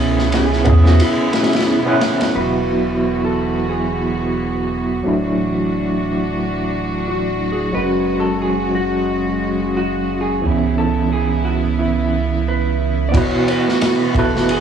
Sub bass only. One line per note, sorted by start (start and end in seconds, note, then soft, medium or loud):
0.00 0.64 C#2 medium
0.67 1.01 E2 medium
2.35 5.02 E1 medium
5.06 7.72 D1 medium
7.75 10.42 F#1 medium
10.45 13.11 C#2 medium
13.14 13.31 E1 loud
14.15 14.60 F#1 medium